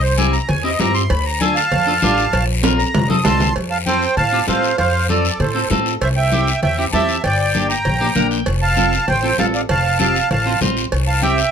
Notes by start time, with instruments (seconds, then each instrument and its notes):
Already playing: upright bass C2
0.02 accordion C5
0.17 clean electric guitar C4 E4 G4, accordion G#5, high conga, short guiro
0.33 accordion A#5, short guiro
0.48 upright bass E2, accordion G#5, cowbell, high conga, low conga, long guiro
0.63 clean electric guitar C4 E4 G4, accordion D#5
0.79 upright bass G2, clean electric guitar C4 E4 G4, accordion A#5, high conga, low timbale, short guiro
0.94 accordion C6, short guiro
1.10 upright bass D2, accordion B5, cowbell, high conga, long guiro
1.26 accordion A#5
1.40 clean electric guitar D4 F4 A4, accordion G#5, high conga, short guiro
1.55 accordion F5 A5, short guiro
1.72 upright bass F2, cowbell, high conga, low conga, long guiro
1.87 clean electric guitar D4 F4 A4
2.02 upright bass A1, clean electric guitar D4 F4 G4, high conga, low timbale, short guiro
2.18 short guiro
2.33 upright bass A#1, cowbell, high conga, long guiro
2.63 clean electric guitar C4 F4 A#4, high conga, high timbale, short guiro
2.78 accordion A#5, short guiro
2.94 upright bass F1, cowbell, high conga, low conga, low timbale, long guiro
3.09 clean electric guitar C4 F4 A4, accordion D#6, high conga
3.24 upright bass C2, clean electric guitar C4 F4 A4, accordion A5 C6, low conga, low timbale, short guiro
3.40 low conga, low timbale, short guiro
3.56 upright bass F2, cowbell, high conga, long guiro
3.70 accordion F5 A5
3.86 clean electric guitar C4 F4 A4, accordion C5 G5, high conga, short guiro
4.02 short guiro
4.17 upright bass A2, accordion F5 A5, cowbell, high conga, low conga, long guiro
4.32 clean electric guitar C4 F4 G4
4.48 upright bass A2, clean electric guitar C4 F4 A4, accordion C5 F5, high conga, low timbale, short guiro
4.64 short guiro
4.78 upright bass F2, accordion C5 F5, cowbell, high conga, long guiro
5.09 clean electric guitar C4 F4 A4, accordion A4 D5, high conga, short guiro
5.25 short guiro
5.40 upright bass A2, accordion A4 C5, cowbell, high conga, low conga, long guiro
5.55 clean electric guitar C4 F4 A4
5.70 upright bass A2, clean electric guitar C4 F4 A4, high conga, low timbale, short guiro
5.86 short guiro
6.01 upright bass C2, accordion C5 E5, cowbell, high conga, long guiro
6.16 accordion E5 G5
6.32 clean electric guitar C4 E4 G4, high conga, short guiro
6.47 short guiro
6.62 upright bass E2, accordion E5 G5, cowbell, high conga, low conga, long guiro
6.78 clean electric guitar C4 E4 G4, accordion E5 G5
6.93 upright bass E2, clean electric guitar C4 E4 G4, accordion E5 A5, high conga, low timbale, short guiro
7.09 short guiro
7.24 upright bass G1, accordion D5 G5, cowbell, high conga, long guiro
7.55 clean electric guitar A#3 D4 G4, high conga, short guiro
7.69 accordion G5 A#5, short guiro
7.85 upright bass A#1, cowbell, high conga, low conga, long guiro
8.00 clean electric guitar A#3 D4 G4
8.15 upright bass A#1, clean electric guitar A#3 D4 A#4 F5, high conga, low conga, short guiro
8.31 clean electric guitar G5, short guiro
8.46 upright bass F1, cowbell, high conga, long guiro
8.62 accordion F5 A5
8.77 clean electric guitar C4 F4 A4, high conga, short guiro
8.93 short guiro
9.08 upright bass A1, accordion C5 G5, cowbell, high conga, low conga, long guiro
9.23 clean electric guitar C4 F4 A4
9.38 upright bass A1, clean electric guitar C4 F4 A4, accordion F5 A5, high conga, low timbale, short guiro
9.54 accordion D5 F5, short guiro
9.69 upright bass F1, accordion F5 A5, cowbell, high conga, low conga, long guiro
9.99 clean electric guitar C4 F4 G4, accordion F5 A5, high conga, short guiro
10.16 short guiro
10.31 upright bass A1, accordion F5 A5, cowbell, high conga, low conga, long guiro
10.46 clean electric guitar C4 F4 C5
10.61 upright bass A1, clean electric guitar C4 F4 C5, high conga, low conga, low timbale, short guiro
10.77 short guiro
10.92 upright bass C2, cowbell, high conga, long guiro
11.07 accordion F5 A5
11.22 clean electric guitar C4 E4 G4, accordion E5 G5, high conga, short guiro
11.38 short guiro